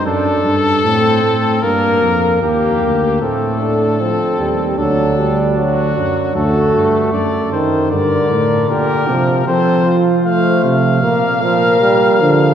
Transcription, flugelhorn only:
0.05 0.56 D4 medium
0.84 1.59 C4 medium
1.63 2.41 A#3 medium
2.43 3.19 A#3 medium
3.21 3.62 C4 medium
3.60 4.02 D4 medium
4.00 4.80 C4 medium
4.78 6.36 D4 medium
6.36 7.12 F#4 medium
7.14 7.90 A4 medium
7.91 8.68 A#4 medium
8.69 9.30 G4 medium
9.47 9.85 A4 medium
9.86 10.24 F4 medium
10.24 10.74 C5 medium
11.03 12.54 A#4 medium

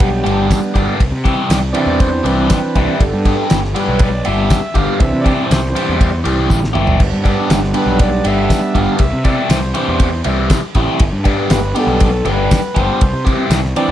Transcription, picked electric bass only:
0.00 0.21 B1 medium
0.26 0.47 G1 medium
0.75 0.86 G1 loud
1.00 1.11 C2 medium
1.12 1.34 C3 medium
1.50 1.72 C2 loud
1.87 2.20 E2 medium
2.25 2.47 C2 medium
2.76 2.87 C2 loud
3.00 3.11 G1 medium
3.14 3.35 G2 medium
3.51 3.73 G1 loud
3.88 4.21 B1 medium
4.27 4.48 G1 medium
4.75 4.86 G1 medium
5.00 5.12 C2 loud
5.13 5.35 C3 medium
5.51 5.73 C2 loud
5.89 6.22 E2 medium
6.26 6.48 C2 medium
6.50 6.73 A1 medium
6.75 6.98 G1 medium
7.00 7.11 G1 medium
7.13 7.35 G2 medium
7.50 7.72 G1 loud
7.86 8.20 B1 medium
8.25 8.47 G1 medium
8.75 8.87 G1 loud
9.00 9.11 C2 medium
9.13 9.35 C3 medium
9.50 9.72 C2 loud
9.89 10.21 E2 medium
10.26 10.48 C2 medium
10.75 10.87 A1 loud
11.00 11.12 G1 medium
11.12 11.35 G2 medium
11.50 11.72 G1 loud
11.87 12.20 B1 medium
12.25 12.47 G1 medium
12.77 12.87 G1 loud
13.02 13.12 C2 loud
13.13 13.35 C3 medium
13.50 13.72 C2 loud

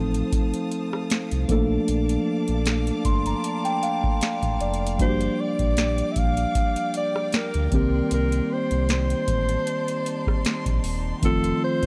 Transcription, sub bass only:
0.00 0.23 A1 loud
1.32 1.45 C2 medium
1.49 1.79 A#1 loud
1.89 2.18 A#1 loud
2.49 2.92 A#1 medium
3.05 3.35 G1 loud
4.43 4.56 A1 medium
4.61 5.01 F1 loud
5.00 5.29 G1 loud
5.60 6.03 A#1 medium
6.16 6.46 A#1 medium
7.55 7.68 D2 medium
7.72 8.02 C2 loud
8.12 8.41 C2 loud
8.72 9.15 C2 loud
9.28 9.58 A1 medium
10.66 10.80 A#1 medium
10.84 11.14 D#1 loud
11.23 11.52 F1 loud

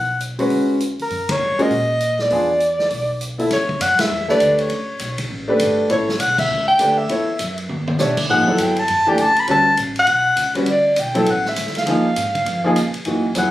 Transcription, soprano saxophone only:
0.00 0.19 F#5 medium
1.02 1.33 A#4 medium
1.31 1.63 C#5 medium
1.62 2.24 D#5 loud
2.22 3.22 D5 medium
3.53 3.83 C#5 medium
3.82 4.02 F#5 medium
4.00 4.29 E5 loud
4.30 4.61 D5 medium
4.60 5.19 C#5 medium
5.92 6.22 C#5 medium
6.20 6.38 F#5 medium
6.39 6.66 E5 loud
6.68 6.99 G5 loud
6.98 7.58 E5 medium
8.30 8.62 F#5 medium
8.60 8.81 G5 medium
8.79 9.11 A5 loud
9.09 9.22 G5 medium
9.21 9.41 A5 loud
9.39 9.50 B5 medium
9.51 9.77 A5 loud
9.99 10.54 F#5 loud
10.70 11.02 D5 medium
11.00 11.32 G5 medium
11.30 11.47 F#5 medium
11.48 11.80 E5 medium
11.78 12.96 F5 medium
13.38 13.51 F#5 medium

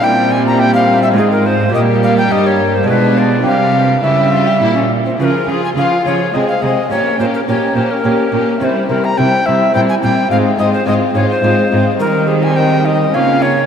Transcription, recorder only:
0.04 0.33 G5 medium
0.32 0.46 G#5 medium
0.47 0.61 A#5 medium
0.59 0.74 G5 medium
0.74 1.02 F5 medium
1.03 1.09 E5 medium
1.17 1.31 G#4 medium
1.31 1.48 A#4 medium
1.46 1.74 C5 medium
1.74 1.81 D#5 medium
2.03 2.17 F5 medium
2.18 2.33 G5 medium
2.32 2.48 D#5 medium
2.46 2.77 C#5 medium
2.75 2.88 C5 medium
2.88 3.19 B4 medium
3.18 3.46 D5 medium
3.46 4.05 F5 medium
4.04 4.90 E5 medium
5.21 5.26 B4 medium
5.25 5.51 A#4 medium
5.49 5.63 G#4 medium
5.64 5.70 G#5 medium
5.77 6.05 F5 medium
6.06 6.35 C#5 medium
6.34 6.48 D#5 medium
6.48 6.63 F5 medium
6.62 6.90 D#5 medium
6.91 7.18 C#5 medium
7.20 7.26 C5 medium
7.34 7.40 A#4 medium
7.48 7.77 C#5 medium
7.76 7.92 C5 medium
7.91 8.47 A#4 medium
8.61 8.87 C5 medium
8.61 8.65 C#5 medium
8.89 9.06 A#4 medium
9.04 9.19 A#5 medium
9.18 9.47 G5 medium
9.46 9.74 E5 medium
9.75 9.81 G5 medium
9.89 9.95 G#5 medium
10.03 10.30 G5 medium
10.31 10.37 F5 medium
10.59 10.73 D#5 medium
10.73 10.87 C5 medium
10.87 10.94 D#5 medium
11.15 11.29 C#5 medium
11.30 11.85 C5 medium
12.00 12.29 A#4 medium
12.28 12.44 G#4 medium
12.43 12.58 G#5 medium
12.56 12.87 G5 medium
12.85 13.16 D#5 medium
13.15 13.44 F5 medium
13.42 13.66 C#5 medium

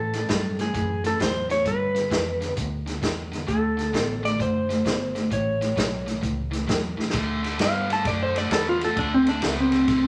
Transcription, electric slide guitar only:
0.00 0.60 A4 medium
0.61 1.06 G#4 medium
1.06 1.21 A4 medium
1.22 1.51 C5 medium
1.51 1.67 C#5 medium
1.67 2.54 B4 medium
3.48 4.26 A4 medium
4.25 4.39 D5 medium
4.42 5.32 C5 loud
5.33 6.19 C#5 medium
7.62 7.90 F5 medium
7.93 8.06 A5 medium
8.07 8.21 D5 medium
8.23 8.36 C5 medium
8.38 8.51 D5 medium
8.53 8.67 A4 medium
8.69 8.82 F4 medium
8.85 8.98 A4 medium
8.98 9.12 D4 medium
9.14 9.28 C4 medium
9.29 9.43 D4 medium
9.45 9.58 A3 medium
9.60 10.07 C4 medium

